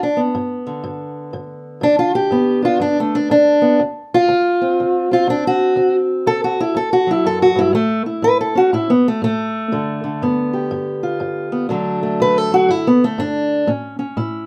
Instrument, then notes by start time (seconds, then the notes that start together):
steel-string acoustic guitar
Already playing: G2
0.03 D4
0.17 B3
0.35 G2
0.67 D3
0.84 G2
1.33 G2
1.81 G2 D4
1.99 F4
2.15 G4
2.31 G2 B3
2.62 D4 F4
2.80 G2 D4
3.00 A3
3.15 D4
3.30 G2 D4
3.62 B3
3.79 D2
4.14 F4
4.28 D2
4.61 C4
4.80 D2
5.11 C4 F4
5.27 D2 D4
5.47 F#4
5.76 D2 C4
6.26 D2 A4
6.44 F#4
6.60 E4
6.75 D2 A4
6.93 F#4
7.07 F#3 E4
7.25 F#2 A4
7.42 F#4
7.55 G2 E4
7.73 A2 A3
8.06 E4
8.22 A2 B4
8.41 A4
8.55 C#4 F#4
8.73 A2 E4
8.90 B3
9.08 A3
9.22 A2 A3
9.72 G2 D3
10.04 D3
10.22 G2 B3
10.53 G4
10.71 G2
11.03 F4
11.20 G2
11.52 B3
11.69 D2 D3 F#3 A3 D4
12.03 A3
12.20 D2 B4
12.38 A4
12.52 F#3 F#4
12.68 G2 E4
12.87 B3
13.04 A3
13.18 G2 D4
13.67 A2 C#4
13.99 C#4
14.17 A2 E4